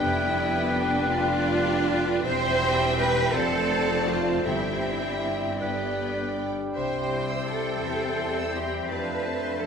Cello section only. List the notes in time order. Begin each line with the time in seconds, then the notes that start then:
0.02 E4
0.73 D4
1.10 F4
2.24 C5
2.98 B4
3.34 A4
4.08 F4
4.45 E4
6.74 C5
7.48 A4
8.55 G4
8.89 B4
9.59 A4